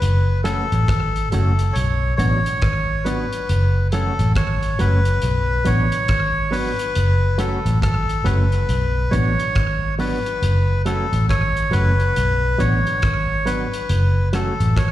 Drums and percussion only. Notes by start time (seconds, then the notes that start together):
0.02 closed hi-hat
0.45 cross-stick, closed hi-hat
0.72 closed hi-hat
0.88 kick, cross-stick, closed hi-hat
1.16 closed hi-hat
1.32 closed hi-hat
1.59 closed hi-hat
1.76 closed hi-hat
2.19 closed hi-hat
2.46 closed hi-hat
2.62 kick, cross-stick, closed hi-hat
3.06 closed hi-hat
3.33 closed hi-hat
3.49 closed hi-hat
3.92 closed hi-hat
4.19 closed hi-hat
4.35 kick, cross-stick, closed hi-hat
4.63 closed hi-hat
4.79 closed hi-hat
5.05 closed hi-hat
5.22 closed hi-hat
5.65 closed hi-hat
5.92 closed hi-hat
6.08 kick, cross-stick, closed hi-hat
6.53 open hi-hat
6.79 closed hi-hat
6.95 closed hi-hat
7.39 closed hi-hat
7.66 closed hi-hat
7.82 kick, cross-stick, closed hi-hat
8.09 closed hi-hat
8.26 closed hi-hat
8.52 closed hi-hat
8.69 closed hi-hat
9.13 closed hi-hat
9.39 closed hi-hat
9.55 kick, cross-stick, closed hi-hat
9.99 open hi-hat
10.26 closed hi-hat
10.43 closed hi-hat
10.86 closed hi-hat
11.13 closed hi-hat
11.29 kick, cross-stick, closed hi-hat
11.57 closed hi-hat
11.73 closed hi-hat
12.00 closed hi-hat
12.16 closed hi-hat
12.60 closed hi-hat
12.87 closed hi-hat
13.02 kick, cross-stick, closed hi-hat
13.47 closed hi-hat
13.73 closed hi-hat
13.89 closed hi-hat
14.33 cross-stick, closed hi-hat
14.60 closed hi-hat
14.77 kick, cross-stick, closed hi-hat